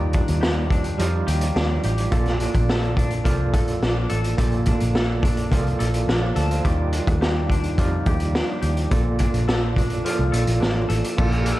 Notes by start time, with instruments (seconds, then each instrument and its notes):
Already playing: picked electric bass D#2, clean electric guitar D#3 F3 D4 G4, tine electric piano G3 D#4 F4 C#5 D5
0.13 clean electric guitar D4, kick, closed hi-hat
0.28 picked electric bass D#2, closed hi-hat
0.41 clean electric guitar G4, snare
0.70 clean electric guitar D4, kick, closed hi-hat
0.84 closed hi-hat
0.98 picked electric bass F2, clean electric guitar F3, tine electric piano G3 D#4 F4 D5, closed hi-hat
1.27 picked electric bass D#2, clean electric guitar G4, closed hi-hat
1.41 closed hi-hat
1.55 picked electric bass D#2, clean electric guitar D4, snare
1.83 picked electric bass A1, clean electric guitar G4, closed hi-hat
1.98 closed hi-hat
2.11 picked electric bass A#1, clean electric guitar A#2 A4, tine electric piano A#3 F4 A4 D5, kick, closed hi-hat
2.25 snare, closed hi-hat
2.40 clean electric guitar D4, closed hi-hat
2.54 picked electric bass A#1, kick, closed hi-hat
2.69 clean electric guitar A4, snare
2.83 closed hi-hat
2.97 clean electric guitar D4, kick, closed hi-hat
3.10 closed hi-hat
3.24 picked electric bass C2, clean electric guitar F3, tine electric piano A#3 F4 A4 D5, kick, closed hi-hat
3.53 picked electric bass A#1, clean electric guitar A4, kick, closed hi-hat
3.67 closed hi-hat
3.82 picked electric bass A#1, clean electric guitar D4, snare
4.09 picked electric bass A1, clean electric guitar A4, closed hi-hat
4.24 closed hi-hat
4.37 picked electric bass A#1, clean electric guitar A#2 A4, tine electric piano A#3 F4 A4 D5, kick, closed hi-hat
4.51 closed hi-hat
4.65 clean electric guitar D4, kick, closed hi-hat
4.80 picked electric bass A#1, closed hi-hat
4.95 clean electric guitar A4, snare
5.22 clean electric guitar D4, kick, closed hi-hat
5.37 closed hi-hat
5.51 picked electric bass C2, clean electric guitar F3, tine electric piano A#3 F4 A4 D5, kick, closed hi-hat
5.67 closed hi-hat
5.79 picked electric bass A#1, clean electric guitar A4, closed hi-hat
5.94 closed hi-hat
6.08 picked electric bass A#1, clean electric guitar D4, snare
6.23 tine electric piano C5 F5
6.36 picked electric bass D2, clean electric guitar A4, tine electric piano D5 A5, closed hi-hat
6.51 tine electric piano C5 F5, closed hi-hat
6.64 picked electric bass D#2, clean electric guitar D#3 G4, tine electric piano G3 D#4 F4 D5, kick, closed hi-hat
6.92 clean electric guitar D4, closed hi-hat
7.07 picked electric bass D#2, kick, closed hi-hat
7.21 clean electric guitar G4, snare
7.50 clean electric guitar D4, kick, closed hi-hat
7.63 closed hi-hat
7.77 picked electric bass F2, clean electric guitar F3, tine electric piano G3 D#4 F4 D5, kick, closed hi-hat
8.06 picked electric bass D#2, clean electric guitar G4, kick, closed hi-hat
8.20 closed hi-hat
8.35 clean electric guitar D4, snare
8.62 picked electric bass D#2, clean electric guitar G4, closed hi-hat
8.77 closed hi-hat
8.90 picked electric bass A#1, clean electric guitar A#2 A4, tine electric piano A#3 F4 A4 D5, kick, closed hi-hat
9.19 clean electric guitar D4, kick, closed hi-hat
9.34 picked electric bass A#1, closed hi-hat
9.48 clean electric guitar A4, snare
9.76 clean electric guitar D4, kick, closed hi-hat
9.90 closed hi-hat
10.04 clean electric guitar F3, tine electric piano A#3 F4 A4 D5, closed hi-hat
10.19 picked electric bass C2
10.32 picked electric bass A#1, clean electric guitar A4, closed hi-hat
10.47 picked electric bass A#1, closed hi-hat
10.60 picked electric bass A1, clean electric guitar D4, snare
10.89 picked electric bass A1, clean electric guitar A4, closed hi-hat
11.04 closed hi-hat
11.17 picked electric bass A#1, clean electric guitar A#2 A4, tine electric piano A#3 F4 A4 D5, kick, crash
11.32 closed hi-hat
11.46 clean electric guitar D4, closed hi-hat